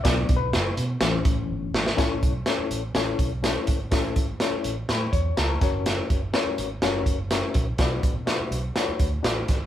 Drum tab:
HH |x-x-x-x-x-x-----|x-x-x-x-x-x-x-x-|x-x-x-x-x-x-x-x-|x-x-x-x-x-x-x-x-|
SD |o---o---o-----oo|o---o---o---o---|o---o---o---o-o-|o---o---o---o---|
BD |o-o-------o-----|o-o-------o---o-|o-o-------o---o-|--o-------o---o-|

HH |x-x-x-x-x-x-x-x-|
SD |o---o---o---o-o-|
BD |o-o-------o---o-|